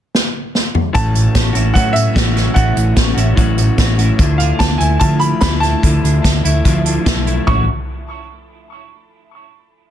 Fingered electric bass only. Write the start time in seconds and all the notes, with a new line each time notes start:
0.95 A1
1.35 A1
1.55 A1
1.76 A2
2.16 A1
2.56 A1
2.77 A1
2.97 A1
3.16 A1
3.38 A1
3.78 A1
4.19 D2
4.60 D2
4.80 D2
5.01 D3
5.42 D2
5.84 D2
6.03 D2
6.24 D2
6.44 D2
6.65 D2
7.06 B1
7.48 A1